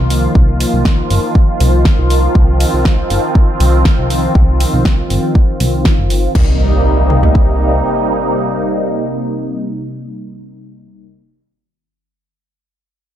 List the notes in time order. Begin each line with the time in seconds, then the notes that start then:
Already playing: D#3 F3 A#3 F4
0.00 C2
0.10 open hi-hat
0.35 C2, kick
0.60 open hi-hat
0.73 C2
0.85 kick, snare
1.10 G1, open hi-hat
1.35 kick
1.60 C2, open hi-hat
1.85 kick, snare
1.99 C2
2.10 open hi-hat
2.35 C2 C4, kick
2.60 open hi-hat
2.74 C2
2.85 kick, snare
3.10 G1, open hi-hat
3.35 kick
3.60 C2, open hi-hat
3.85 kick, snare
3.98 C2
4.10 open hi-hat
4.35 C2, kick
4.60 open hi-hat
4.73 C2
4.85 kick, snare
5.10 G1, open hi-hat
5.35 kick
5.60 C2, open hi-hat
5.85 kick, snare
5.98 G1
6.10 open hi-hat
6.35 C2 C3 G3 A#3 D#4, kick, crash, impact
7.10 mid tom
7.23 floor tom
7.35 kick